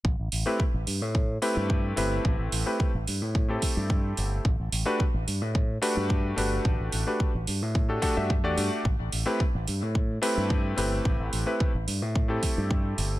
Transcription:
<<
  \new Staff \with { instrumentName = "Electric grand piano" } { \time 4/4 \key a \dorian \tempo 4 = 109 r8. <a c' e' g' b'>16 r4. <a c' e' g' b'>4 <a c' e' g' b'>8~ | <a c' e' g' b'>8. <a c' e' g' b'>8 r4 <a c' e' g' a'>4.~ <a c' e' g' a'>16 | r8. <a d' fis' g' b'>16 r4. <a d' fis' g' b'>4 <a d' fis' g' b'>8~ | <a d' fis' g' b'>8. <a d' fis' g' b'>8 r4 <a d' fis' g' a'>16 <a d' fis' g' a'>16 <a d' fis' g' e''>16 r16 <a d' fis' g' d''>8. |
r8. <a c' e' g' b'>16 r4. <a c' e' g' b'>4 <a c' e' g' b'>8~ | <a c' e' g' b'>8. <a c' e' g' b'>8 r4 <a c' e' g' a'>4.~ <a c' e' g' a'>16 | }
  \new Staff \with { instrumentName = "Fingered electric bass" } { \clef bass \time 4/4 \key a \dorian a,,16 a,,16 a,,16 r8 a,,16 g,16 a,8. r16 g,8. g,,16 r16 | a,,16 a,,16 a,,16 r8 a,,16 g,16 a,8. r16 g,8. g,,16 r16 | a,,16 a,,16 a,,16 r8 a,,16 g,16 a,8. r16 g,8. g,,16 r16 | a,,16 a,,16 a,,16 r8 a,,16 g,16 a,8. r16 g,8 e,16 g,16 r16 |
a,,16 a,,16 a,,16 r8 a,,16 g,16 a,8. r16 g,8. g,,16 r16 | a,,16 a,,16 a,,16 r8 a,,16 g,16 a,8. r16 g,8. g,,16 r16 | }
  \new DrumStaff \with { instrumentName = "Drums" } \drummode { \time 4/4 bd8 hho8 bd8 hho8 bd8 hho8 bd8 hho8 | bd8 hho8 bd8 hho8 bd8 <hho bd>8 bd8 hho8 | bd8 hho8 bd8 hho8 bd8 hho8 bd8 hho8 | bd8 hho8 bd8 hho8 bd8 <hho bd>8 bd8 hho8 |
bd8 hho8 bd8 hho8 bd8 hho8 bd8 hho8 | bd8 hho8 bd8 hho8 bd8 <hho bd>8 bd8 hho8 | }
>>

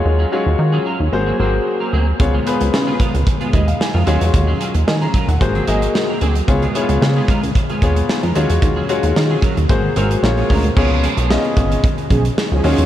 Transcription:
<<
  \new Staff \with { instrumentName = "Grand piano" } { \time 4/4 \key des \mixolydian \tempo 4 = 112 << { r1 | r2 r8 ees''16 f''16 aes''16 f''8 r16 | r4 aes''16 bes''8 ges''8 r4. r16 | r1 |
r1 | r1 | } \\ { <aes f' ges' des''>8 <aes f' ges' des''>4 r8 <bes ges' aes' c''>8 <bes ges' aes' c''>8 r4 | <ces' f' aes' des''>16 r16 <ces' f' aes' ces''>4 r2 <aes f' ges' des''>8~ | <aes f' ges' des''>8 r4. <bes ges' aes' c''>8 <bes ges' aes' ees''>8 r4 | <ces' f' aes' des''>16 r16 <ces' fes' f' aes' des''>4 r4 <ces' f' aes' des''>8 r8 <aes f' ges' des''>8~ |
<aes f' ges' des''>8 <aes f' ges' des''>4 r8 <bes ges' aes' c''>8 <bes ges' aes' c''>8 <bes f' aes' des''>4 | <ces' des' f' aes' des''>8 r8 <ces' des' f' aes' ees''>4 r4. <aes ees' f' ges' des''>8 | } >> }
  \new Staff \with { instrumentName = "Analog polysynth" } { \time 4/4 \key des \mixolydian r1 | r1 | r1 | r1 |
r1 | r2 r8 <f des' aes'>16 r8 <f des' aes'>8. | }
  \new Staff \with { instrumentName = "Clean electric guitar" } { \time 4/4 \key des \mixolydian r16 <ges des' f' aes'>16 <ges des' f' aes'>16 r8 <ges des' f' aes'>16 <ges des' f' bes'>16 r8 <ges bes c' aes'>16 <ges bes c' aes'>16 r8 <ges bes c' bes'>16 <ges bes c' aes'>16 r16 | r16 <aes ces' f' aes'>16 <aes ces' f' aes'>16 r8 <aes ces' f' aes'>16 <aes ces' f' bes'>16 r8 <aes ces' f' aes'>16 <aes ces' f' aes'>16 r8 <aes ces' f' bes'>16 <ges des' f' aes'>16 r16 | r16 <ges des' f' aes'>16 <ges des' f' aes'>16 r8 <ges des' f' aes'>16 <ges des' f' bes'>16 r8 <ges bes c' aes'>16 <ges bes c' aes'>16 r8 <ges bes c' bes'>16 <ges bes c' aes'>16 r16 | r16 <aes ces' f' aes'>16 <aes ces' f' aes'>16 r8 <aes ces' f' aes'>16 <aes ces' f' bes'>16 r8 <aes ces' f' aes'>16 <aes ces' f' aes'>16 r8 <aes ces' f' bes'>16 <ges des' f' aes'>16 r16 |
r16 <ges des' f' aes'>16 <ges des' f' aes'>16 r8 <ges des' f' aes'>16 <ges des' f' bes'>16 r8. <aes c' ges' bes'>16 r8 <aes des' f' des''>16 <aes des' f' bes'>16 r16 | <f ces' des' aes'>16 r16 <f ces' des' aes'>16 <f ces' des' aes'>16 r2 r8 <ges des' f' aes'>16 r16 | }
  \new Staff \with { instrumentName = "Analog synth bass" } { \clef bass \time 4/4 \key des \mixolydian ees,8 r16 ees,16 ees8 r16 ees,16 aes,,8 aes,,8 r8 d,8 | des,8 r16 des,16 des8 r16 des,16 r8 ees,8 r16 f,16 ees,16 fes,16 | ees,8 r16 ees,16 ees8 r16 ees,16 aes,,8 aes,,8 r8 d,8 | des,8 r16 des,16 des8 r16 des,16 r8 ees,8 r16 f,16 ees,16 fes,16 |
ees,8 r16 ees,16 ees8 r16 ees,16 aes,,8 aes,,8 bes,,8 d,8 | des,8. ces,8 r16 aes,,8 r8 ces,8 r16 des,16 ees,16 fes,16 | }
  \new DrumStaff \with { instrumentName = "Drums" } \drummode { \time 4/4 r4 r4 r4 r4 | <hh bd>8 hh16 hh16 sn8 <hh bd>16 hh16 <hh bd>16 hh16 <hh bd>16 hh16 sn8 hh16 hh16 | <hh bd>8 hh16 hh16 sn16 hh16 <hh bd>16 hh16 <hh bd>16 hh16 hh16 hh16 sn8 hh16 hh16 | <hh bd>16 hh16 hh16 hh16 sn8 <hh bd>16 hh16 <hh bd>16 hh16 <hh bd>16 hh16 sn16 hh16 hh16 hh16 |
<hh bd>8 hh16 hh16 sn8 <hh bd>16 hh16 <hh bd>8 hh16 hh16 sn16 hh16 <hho bd>16 hh16 | <cymc bd>8 hh16 hh16 sn16 hh16 <hh bd>16 hh16 <hh bd>16 hh16 <hh bd>16 hh16 sn8 hho16 hh16 | }
>>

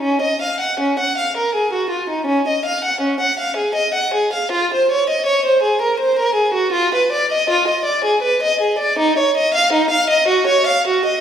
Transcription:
\new Staff \with { instrumentName = "Violin" } { \time 3/4 \key des \major \tempo 4 = 81 des'16 ees''16 f''16 ges''16 des'16 ges''16 f''16 bes'16 aes'16 ges'16 f'16 ees'16 | des'16 ees''16 f''16 ges''16 des'16 ges''16 f''16 aes'16 ees''16 ges''16 aes'16 f''16 | f'16 c''16 des''16 ees''16 des''16 c''16 aes'16 bes'16 c''16 bes'16 aes'16 ges'16 | \key ees \minor f'16 ces''16 d''16 ees''16 f'16 ees''16 d''16 aes'16 ces''16 ees''16 aes'16 d''16 |
ees'16 des''16 ees''16 f''16 ees'16 f''16 ees''16 ges'16 des''16 f''16 ges'16 ees''16 | }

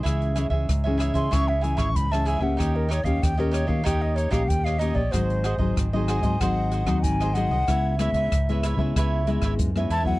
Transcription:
<<
  \new Staff \with { instrumentName = "Flute" } { \time 4/4 \key cis \minor \tempo 4 = 94 r4. r16 bis''16 cis'''16 e''16 gis''16 cis'''16 b''16 a''16 gis''16 fis''16 | g''16 ais'16 cis''16 eis''16 g''16 ais'16 cis''16 eis''16 g''16 dis''16 cis''16 eis''16 g''16 eis''16 dis''16 d''16 | bis'4 r8 gis''8 fis''4 gis''8 fis''8~ | fis''8 e''4 r2 a''16 fis''16 | }
  \new Staff \with { instrumentName = "Cavaquinho" } { \time 4/4 \key cis \minor <e' gis' cis'' e''>8 <e' gis' cis'' e''>16 <gis' cis'' e''>8 <gis' cis'' e''>16 <e' gis' cis'' e''>16 <gis' cis'' e''>16 <e' gis' cis'' e''>8 <e' gis' cis'' e''>16 <e' gis' cis'' e''>16 r16 <gis' cis'' e''>16 <e' gis' cis'' e''>16 <gis' cis'' e''>16 | <dis' g' cis'' dis''>8 <dis' g' cis'' dis''>16 <g' cis'' dis''>8 <g' cis'' dis''>16 <dis' g' cis'' dis''>16 <g' cis'' dis''>16 <dis' g' cis'' dis''>8 <dis' g' cis'' dis''>16 <dis' g' cis'' dis''>16 r16 <g' cis'' dis''>16 <dis' g' cis'' dis''>16 <g' cis'' dis''>16 | <fis' gis' bis' dis''>8 <fis' gis' bis' dis''>16 <gis' bis' dis''>8 <gis' bis' dis''>16 <fis' gis' bis' dis''>16 <gis' bis' dis''>16 <fis' gis' bis' dis''>8 <fis' gis' bis' dis''>16 <fis' gis' bis' dis''>16 r16 <gis' bis' dis''>16 <fis' gis' bis' dis''>16 <gis' bis' dis''>16 | <e' b' cis'' e''>8 <e' b' cis'' e''>16 <b' cis'' e''>8 <b' cis'' e''>16 <e' b' cis'' e''>16 <b' cis'' e''>16 <e' b' cis'' e''>8 <e' b' cis'' e''>16 <e' b' cis'' e''>16 r16 <b' cis'' e''>16 <e' b' cis'' e''>16 <b' cis'' e''>16 | }
  \new Staff \with { instrumentName = "Nylon-string guitar" } { \time 4/4 \key cis \minor << { <e gis cis'>8 <e gis cis'>8 r16 <e gis cis'>8. <e gis cis'>16 r16 <e gis cis'>8. <e gis cis'>8 <ais cis' g'>16~ | <ais cis' g'>8 r16 <ais cis' g'>8 <ais cis' g'>8 <ais cis' g'>16 <ais cis' g'>8. <ais cis' g'>8. <ais cis' g'>16 r16 | <fis bis dis'>8 r16 <fis bis dis'>8 <fis bis dis'>8 <fis bis dis'>16 <fis bis dis'>8. <fis bis dis'>8. <fis bis dis'>16 r16 | <gis b e'>8 <gis b e'>8 r16 <gis b e'>8 <gis b e'>8. <gis b e'>8. <gis b e'>8 <fis b e'>16 | } \\ { cis4 gis,4 cis4 gis,4 | dis4 ais,4 dis4 ais,4 | gis,4 dis4 gis,4 dis4 | cis4 gis,4 cis4 gis,4 | } >> }
  \new Staff \with { instrumentName = "Fingered electric bass" } { \clef bass \time 4/4 \key cis \minor cis,8. cis,16 cis,8. cis16 cis,8. gis,,16 cis,8. cis,16 | dis,8. dis,16 dis,8. dis16 dis,8. ais,,16 dis,8. ais,,16 | gis,,8. gis,,16 gis,,8. gis,16 gis,,8. dis,16 gis,,8. bis,,16 | cis,8. cis,16 cis,8. cis16 cis,8. gis,,16 fis,8 e,8 | }
  \new DrumStaff \with { instrumentName = "Drums" } \drummode { \time 4/4 <hh bd ss>16 hh16 <hh ss>16 bd16 <hh bd ss>8 <hh ss>16 <hh bd>16 <hh bd ss>8 hh16 <hh bd ss>16 <hh bd>16 <hh ss>16 hh16 bd16 | <hh bd ss>8 <hh ss>16 <hh bd>16 <hh bd ss>16 hh16 <hh ss>16 bd16 <hh bd ss>8 hh16 <hh bd ss>16 <hh bd>16 ss16 hh16 bd16 | <hh bd ss>16 hh16 <hh ss>16 bd16 <hh bd ss>8 <hh ss>16 <hh bd>16 <hh bd ss>8 hh16 <hh bd ss>16 <hh bd>16 <hh ss>16 hh16 bd16 | <hh bd ss>8 <hh ss>16 <hh bd>16 <hh bd ss>16 hh16 <hh ss>16 bd16 <hh bd ss>8 hh16 <hh bd ss>16 <hh bd>16 ss16 hh16 bd16 | }
>>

